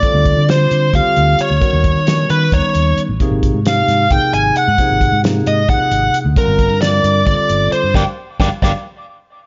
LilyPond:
<<
  \new Staff \with { instrumentName = "Flute" } { \time 7/8 \key g \minor \tempo 4 = 133 d'''4 c'''4 f'''4 cis'''8~ | cis'''4. b''8 des'''4 r8 | r4 f'''4 g'''8 aes'''8 fis'''8~ | fis'''4 r8 ees'''8 ges'''4 r8 |
bes''4 d'''4 d'''4 c'''8 | d'''8 r8 d'''8 d'''8 r4. | }
  \new Staff \with { instrumentName = "Lead electric guitar" } { \time 7/8 \key g \minor d''4 c''4 f''4 cis''8~ | cis''4. b'8 des''4 r8 | r4 f''4 g''8 aes''8 fis''8~ | fis''4 r8 ees''8 ges''4 r8 |
bes'4 d''4 d''4 c''8 | <d'' f'' g''>8 r8 <d'' f'' g''>8 <d'' f'' g''>8 r4. | }
  \new Staff \with { instrumentName = "Tine electric piano" } { \time 7/8 \key g \minor <d g c' f' a'>4 <d g c' f' c''>4 <d g c' f' g'>4~ <d g c' f' g'>16 r16 | <ees g b des' fis'>4 <ees g b des' fis'>4 <ees g b des' ees'>4~ <ees g b des' ees'>16 r16 | <c f bes ees' aes'>4 <c f bes ees' g'>4 <c f bes ees' aes'>4~ <c f bes ees' aes'>16 r16 | <c f bes ees' aes'>4 <c f bes ees' aes'>4 <c f bes ees' aes'>4~ <c f bes ees' aes'>16 r16 |
<d g c' f' bes'>4 <d g c' f' bes'>4 <d g c' f' a'>4~ <d g c' f' a'>16 r16 | <g bes d'>8 r8 <g bes d'>8 <g bes d'>8 r4. | }
  \new Staff \with { instrumentName = "Fingered electric bass" } { \clef bass \time 7/8 \key g \minor r16 d,8 d8. d8 d,16 r16 d,8 r16 d,16 | r16 ees,8 ees8. ees8 ees,16 r16 ees,8 r16 a,,16 | r16 aes,,8 aes,8. aes,8 aes,,16 r16 aes,,8 r16 aes,16 | r16 aes,,8 aes,8. aes,8 aes,,16 r16 aes,,8 r16 d,16 |
r16 g,,8 g,8. g,8 g,,16 r16 g,,8 r16 g,16 | g,,16 r8. g,,16 r16 g,,16 r4. r16 | }
  \new DrumStaff \with { instrumentName = "Drums" } \drummode { \time 7/8 <hh bd>8 <hh bd>8 <hh sn>8 hh8 <hh bd sn>8 hh8 hh8 | <hh bd>8 <hh bd>8 <hh sn>8 hh8 <hh bd>8 hh8 hh8 | <hh bd>8 <hh bd>8 <hh sn>8 <hh sn>8 <hh bd>8 hh8 hh8 | <hh bd>8 <hh bd>8 <hh sn>8 hh8 <hh bd>8 hh8 hh8 |
<hh bd>8 <hh bd>8 <hh sn>8 hh8 <hh bd>8 hh8 hh8 | <bd sn>4 <bd sn>8 <bd sn>8 r4. | }
>>